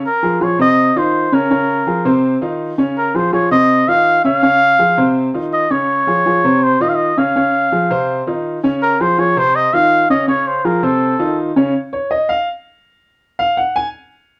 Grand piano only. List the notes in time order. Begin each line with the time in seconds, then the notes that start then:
0.23 F3 F4 G#4
0.41 F3 F4 G#4
0.59 C3 C4 C5
0.96 D#3 D#4 F4
1.32 C#3 C#4 C#5
1.50 C#3 C#4 C#5
1.87 F3 F4 G#4
2.05 C3 C4 C5
2.41 D#3 D#4 F4
2.78 C#3 C#4 C#5
3.15 F3 F4 G#4
3.33 F3 F4 G#4
3.51 C3 C4 C5
3.87 D#3 D#4 F4
4.24 C#3 C#4 C#5
4.43 C#3 C#4 C#5
4.79 F3 F4 G#4
4.97 C3 C4 C5
5.34 D#3 D#4 F4
5.70 C#3 C#4 C#5
6.07 F3 F4 G#4
6.26 F3 F4 G#4
6.44 C3 C4 C5
6.80 D#3 D#4 F4
7.17 C#3 C#4 C#5
7.36 C#3 C#4 C#5
7.72 F3 F4 G#4
7.90 C3 C4 C5
8.27 D#3 D#4 F4
8.63 C#3 C#4 C#5
9.00 F3 F4 G#4
9.18 F3 F4 G#4
9.36 C3 C4 C5
9.73 D#3 D#4 F4
10.10 C#3 C#4 C#5
10.28 C#3 C#4 C#5
10.65 F3 F4 G#4
10.83 C3 C4 C5
11.19 D#3 D#4 F4
11.56 C#3 C#4 C#5
11.93 C#5
12.11 D#5
12.29 F5
13.39 F5
13.57 F#5
13.76 G#5